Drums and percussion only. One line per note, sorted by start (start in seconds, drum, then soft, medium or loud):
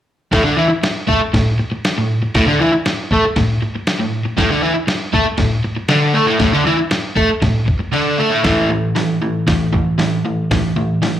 0.33 kick loud
0.33 snare loud
0.33 crash medium
0.83 snare loud
0.83 crash medium
1.09 kick medium
1.34 kick loud
1.34 snare loud
1.34 crash medium
1.85 snare loud
1.85 crash medium
2.35 kick loud
2.35 snare loud
2.35 crash medium
2.86 snare loud
2.86 crash medium
3.11 kick medium
3.36 kick loud
3.36 snare loud
3.36 crash medium
3.87 snare loud
3.87 crash medium
4.38 kick loud
4.38 snare loud
4.38 crash medium
4.88 snare loud
4.88 crash medium
5.14 kick medium
5.38 kick loud
5.38 snare loud
5.38 crash medium
5.88 snare loud
5.88 crash medium
6.40 kick loud
6.40 snare loud
6.40 crash medium
6.91 snare loud
6.91 crash medium
7.17 kick medium
7.42 kick loud
7.42 snare loud
7.42 crash medium
7.68 kick medium
7.93 crash medium
8.44 kick loud
8.44 snare loud
8.44 open hi-hat medium
8.96 snare loud
8.96 open hi-hat medium
9.47 kick loud
9.47 snare loud
9.47 open hi-hat medium
9.74 kick medium
9.99 snare loud
9.99 open hi-hat medium
10.51 kick loud
10.51 snare loud
10.51 open hi-hat medium
11.03 snare loud
11.03 open hi-hat medium